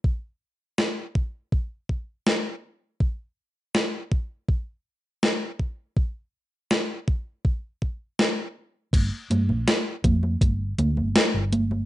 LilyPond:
<<
  \new Staff \with { instrumentName = "Fingered electric bass" } { \clef bass \time 4/4 \key g \minor \tempo 4 = 81 r1 | r1 | r1 | g,,16 r16 g,16 bes,,16 r8 f,8 g,,8 d,16 g,,16 r16 g,,8. | }
  \new DrumStaff \with { instrumentName = "Drums" } \drummode { \time 4/4 bd4 sn8 bd8 bd8 bd8 sn4 | bd4 sn8 bd8 bd4 sn8 bd8 | bd4 sn8 bd8 bd8 bd8 sn4 | <cgho cymc hh bd>8 <cgho hh>16 cgho16 <cgho hh sn>8 <cgho hh bd>16 cgho16 <cgho hh bd>8 <cgho hh>16 cgho16 <cgho hh sn>8 <cgho hh>16 cgho16 | }
>>